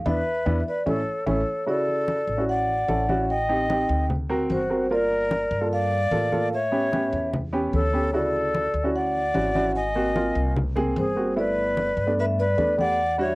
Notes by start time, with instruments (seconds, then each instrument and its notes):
0.06 upright bass E2, grand piano B3 D4 E4, flute B4, vibraphone E5, high conga
0.46 upright bass E2, grand piano B3 D4 E4, high conga
0.68 flute B4, vibraphone D5
0.86 upright bass A1, grand piano A3 C#4 E4, flute A4, vibraphone C#5, high conga
1.26 upright bass A1, grand piano A3 C#4 E4, flute A4, vibraphone C#5, high conga
1.66 grand piano C#3 E4 F#4, flute A4, vibraphone D5, high conga
1.88 high conga
2.08 high conga
2.27 upright bass A1, high conga
2.37 grand piano C#4 E4 F#4
2.48 flute D5, vibraphone F#5, high conga
2.69 high conga
2.88 upright bass A1, grand piano C#4 E4 A4, high conga
3.09 grand piano C#4 E4 F#4, high conga
3.29 flute D#5, vibraphone G5, high conga
3.49 grand piano C4 D#4 G4, high conga
3.69 grand piano C4 D#4 G4, high conga
3.89 upright bass D2
4.10 high conga, low conga
4.30 grand piano C4 F#4 A#4, high conga
4.50 upright bass G1, flute F#4, vibraphone C5, high conga
4.70 grand piano C4 F#4 A#4, high conga
4.90 grand piano A#3 F4 A#4, flute A#4, vibraphone D5, high conga
5.11 high conga
5.31 high conga
5.51 upright bass G2, high conga
5.61 grand piano A#3 F4 A4
5.72 flute D5, vibraphone F5, high conga
5.92 high conga
6.11 upright bass A2, grand piano A#3 F4 A4, high conga
6.32 grand piano A#3 F4 A4, high conga
6.53 flute C#5, vibraphone E5, high conga
6.72 grand piano B3 C#4 G4, high conga
6.92 grand piano B3 C#4 G4, high conga
7.13 upright bass E2
7.33 high conga, low conga
7.53 grand piano B3 C#4 G4, high conga
7.73 upright bass D2, flute A4, vibraphone C#5, high conga
7.93 grand piano B3 C#4 G4, high conga
8.13 grand piano C#3 E4 F#4, flute A4, vibraphone D5, high conga
8.35 high conga
8.55 high conga
8.74 upright bass D2, high conga
8.84 grand piano C#4 E4 F#4
8.95 flute D5, vibraphone F#5, high conga
9.15 high conga
9.34 upright bass G#1, grand piano C#4 E4 F#4, high conga
9.55 grand piano C#4 E4 F#4, high conga
9.76 flute D#5, vibraphone G#5
9.95 grand piano A#3 C4 F#4, high conga
10.15 grand piano A#3 C4 F4, high conga
10.35 upright bass C2
10.56 high conga, low conga
10.76 grand piano A#3 C4 G#4, high conga, low conga
10.96 upright bass G1, flute G#4, vibraphone C5, high conga
11.16 grand piano A#3 C4 F#4, high conga
11.36 grand piano A3 B3 E4, flute B4, vibraphone D5, high conga
11.57 high conga
11.77 high conga
11.97 upright bass G2, high conga
12.07 grand piano A3 B3 D4
12.17 flute B4, vibraphone E5, high conga
12.38 flute B4, vibraphone D5, high conga
12.58 upright bass E2, grand piano A3 B3 D4, high conga
12.77 grand piano A3 B3 G4, flute D5, vibraphone F#5, high conga
12.99 high conga
13.18 grand piano G3 D4 F#4, flute C#5, vibraphone E5, high conga